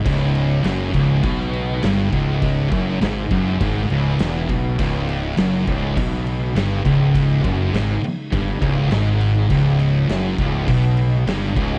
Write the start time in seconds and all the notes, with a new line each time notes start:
Already playing: C#3 G#3 D#4
0.05 C#1 C#2, kick, crash
0.35 crash
0.64 F#1 F#2, snare, crash
0.94 C#1 C#2, kick, crash
1.23 B1 B2, kick, crash
1.40 snare
1.53 crash
1.83 G1 G2, snare, crash
2.12 C#1 C#2, kick, crash
2.42 kick, crash
2.71 F#1 F#2, kick, crash
3.01 G#1 G#2, snare, crash
3.30 F#1 F#2, kick, crash
3.60 G#1 G#2, kick, crash
3.90 C#1 C#2, crash
4.19 E1 E2, snare, crash
4.49 B1 B2, kick, crash
4.79 C#1 C#2, kick, crash
5.09 crash
5.37 F#1 F#2, snare, crash
5.67 C#1 C#2, kick, crash
5.97 B1 B2, kick, crash
6.14 snare
6.27 crash
6.55 G1 G2, snare, crash
6.85 C#1 C#2, kick, crash
7.15 kick, crash
7.43 F#1 F#2, kick, crash
7.73 G#1 G#2, snare, crash
8.02 muted fingered electric bass stroke, muted overdriven electric guitar stroke, muted distorted electric guitar stroke, crash
8.32 G1 G2, kick, crash
8.61 C#1 C#2, kick, crash
8.91 G#1 G#2, snare, crash
9.21 crash
9.49 C#1 C#2, kick, crash
9.79 crash
10.09 F#1 F#2, snare, crash
10.38 C#1 C#2, kick, crash
10.68 B1 B2, kick, crash
10.97 crash
11.26 G1 G2, snare, crash
11.55 C#1 C#2, kick, crash